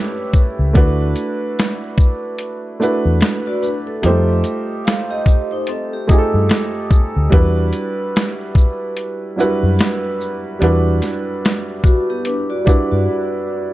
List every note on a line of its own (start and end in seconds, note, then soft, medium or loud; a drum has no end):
0.00 0.73 A3 medium
0.00 0.76 C#4 medium
0.00 0.74 D4 medium
0.00 0.75 E4 medium
0.00 0.76 G4 medium
0.00 0.77 B4 loud
0.33 kick medium
0.33 shaker soft
0.59 0.74 C#2 medium
0.73 1.13 D2 loud
0.73 2.00 A3 medium
0.73 2.01 D4 medium
0.73 2.01 E4 medium
0.73 2.02 F#4 medium
0.73 2.02 B4 loud
0.73 kick loud
0.73 closed hi-hat medium
1.16 closed hi-hat soft
1.16 shaker soft
1.59 snare loud
1.59 closed hi-hat medium
1.98 kick medium
1.98 shaker soft
2.38 closed hi-hat medium
2.79 3.77 A3 medium
2.79 3.77 D4 medium
2.79 3.78 E4 medium
2.79 3.78 F#4 medium
2.79 3.79 B4 loud
2.79 shaker medium
3.05 3.20 E2 medium
3.21 snare loud
3.21 closed hi-hat medium
3.47 3.62 F#4 medium
3.47 3.62 D5 medium
3.62 3.86 D4 medium
3.62 3.86 B4 medium
3.62 shaker soft
3.87 4.26 A4 medium
4.02 4.42 F2 loud
4.02 4.11 G3 medium
4.02 5.30 D#4 medium
4.02 5.30 F4 medium
4.02 5.31 G4 medium
4.02 closed hi-hat medium
4.06 5.32 A3 medium
4.06 5.31 C5 medium
4.44 closed hi-hat soft
4.44 shaker soft
4.85 5.09 A4 medium
4.85 5.09 F5 medium
4.85 snare loud
4.85 closed hi-hat medium
5.10 5.50 G4 medium
5.10 5.50 D#5 medium
5.26 kick medium
5.26 shaker soft
5.51 5.67 D#4 medium
5.51 5.67 C5 medium
5.67 5.92 C4 medium
5.67 5.92 A4 medium
5.67 closed hi-hat medium
5.93 7.12 G4 medium
6.07 7.05 A3 medium
6.07 7.06 D#4 medium
6.07 7.06 F4 medium
6.07 7.07 G4 medium
6.07 kick medium
6.07 shaker medium
6.11 6.18 G#4 medium
6.18 7.11 A4 loud
6.34 6.49 G2 medium
6.49 snare loud
6.49 closed hi-hat medium
6.91 kick medium
6.91 shaker soft
7.16 7.31 D2 medium
7.30 7.71 E2 loud
7.30 8.57 G3 medium
7.30 8.58 D4 medium
7.30 8.58 E4 medium
7.30 8.59 F#4 medium
7.30 kick loud
7.30 closed hi-hat medium
7.34 8.59 B4 loud
7.73 closed hi-hat soft
7.73 shaker soft
8.16 snare loud
8.16 closed hi-hat medium
8.55 kick medium
8.55 shaker soft
8.97 closed hi-hat medium
9.36 9.45 F#3 medium
9.36 10.35 D4 medium
9.36 10.35 E4 medium
9.36 10.36 F#4 medium
9.36 shaker medium
9.40 10.37 G3 medium
9.40 10.36 B4 loud
9.63 9.78 F#2 medium
9.79 snare loud
9.79 closed hi-hat medium
10.21 shaker soft
10.59 11.00 E2 loud
10.59 11.86 G3 medium
10.59 11.87 D4 medium
10.59 11.88 E4 medium
10.59 11.88 F#4 medium
10.59 closed hi-hat medium
10.64 11.89 B4 medium
11.02 snare soft
11.02 closed hi-hat soft
11.02 shaker soft
11.45 snare loud
11.45 closed hi-hat medium
11.84 12.08 F#4 medium
11.84 kick medium
11.84 shaker soft
12.10 12.25 B3 medium
12.10 12.25 G4 medium
12.25 12.50 D4 medium
12.25 12.50 B4 medium
12.25 closed hi-hat medium
12.50 12.66 F#4 medium
12.50 12.65 D5 medium
12.65 13.62 G3 medium
12.65 13.63 D4 medium
12.65 12.90 D4 medium
12.65 13.64 E4 medium
12.65 13.64 F#4 medium
12.65 12.90 B4 medium
12.65 kick medium
12.65 shaker medium
12.69 13.65 B4 medium
12.91 13.07 G2 medium
12.91 13.73 F#4 medium
12.91 13.73 D5 medium